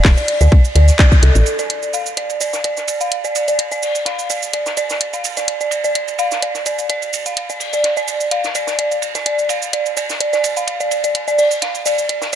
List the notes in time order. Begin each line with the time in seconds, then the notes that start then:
0.05 D1, kick, snare, clap, open hi-hat
0.17 D5, ride, shaker
0.28 closed hi-hat, ride
0.41 D2 D5, shaker
0.52 kick, ride
0.65 shaker
0.75 D2 D5, closed hi-hat, ride
0.88 snare, shaker
0.99 D5, kick, clap, closed hi-hat, ride
1.12 kick, shaker
1.23 C2 A4, closed hi-hat, ride
1.35 A1, ride, shaker
1.46 ride, shaker
1.59 D5, snare, closed hi-hat, shaker
1.70 closed hi-hat, ride
1.83 shaker
1.94 F5, ride, shaker
2.06 shaker
2.17 D5, closed hi-hat, ride
2.30 ride, shaker
2.41 D5, ride, shaker
2.53 snare, shaker
2.64 D5, closed hi-hat, ride
2.77 snare, shaker
2.88 closed hi-hat, ride, shaker
3.00 F5, ride, shaker
3.12 closed hi-hat, ride
3.24 D5, ride, shaker
3.35 ride, shaker
3.48 D5, closed hi-hat, shaker
3.59 closed hi-hat, ride
3.72 D5, shaker
3.83 open hi-hat, shaker
3.95 ride, shaker
4.05 F5, snare, closed hi-hat, ride
4.19 shaker
4.30 D5, ride, shaker
4.43 shaker
4.53 D5, closed hi-hat, ride
4.66 snare, shaker
4.77 D5, closed hi-hat, ride, shaker
4.90 snare, shaker
5.01 closed hi-hat, ride
5.13 F5, ride, shaker
5.24 ride, shaker
5.37 D5, snare, closed hi-hat, shaker
5.48 closed hi-hat, ride
5.61 D5, shaker
5.71 ride, shaker
5.84 D5, shaker
5.95 closed hi-hat, ride
6.08 ride, shaker
6.19 F5, ride, shaker
6.31 snare, shaker
6.42 D5, closed hi-hat, ride
6.55 snare, shaker
6.66 D5, closed hi-hat, ride, shaker
6.78 ride, shaker
6.89 D5, closed hi-hat, ride
7.02 ride, shaker
7.13 ride, shaker
7.26 F5, closed hi-hat, shaker
7.37 closed hi-hat, ride
7.50 D5, shaker
7.60 open hi-hat, shaker
7.73 D5, ride, shaker
7.84 snare, closed hi-hat, ride
7.97 D5, shaker
8.08 ride, shaker
8.20 shaker
8.31 F5, closed hi-hat, ride
8.44 snare, shaker
8.55 D5, closed hi-hat, ride, shaker
8.67 snare, shaker
8.79 D5, closed hi-hat, ride
8.91 ride, shaker
9.02 ride, shaker
9.15 D5, snare, closed hi-hat, shaker
9.26 D5, closed hi-hat, ride
9.39 shaker
9.49 F5, ride, shaker
9.62 shaker
9.73 D5, closed hi-hat, ride
9.86 ride, shaker
9.97 D5, ride, shaker
10.10 snare, shaker
10.20 D5, closed hi-hat, ride
10.33 D5, snare, shaker
10.44 closed hi-hat, ride, shaker
10.56 F5, ride, shaker
10.67 closed hi-hat, ride
10.80 D5, ride, shaker
10.91 ride, shaker
11.04 D5, closed hi-hat, shaker
11.15 closed hi-hat, ride
11.28 D5, shaker
11.39 D5, open hi-hat, shaker
11.51 ride, shaker
11.62 F5, snare, closed hi-hat, ride
11.75 shaker
11.86 D5, ride, shaker
11.98 shaker
12.09 D5, closed hi-hat, ride
12.22 snare, shaker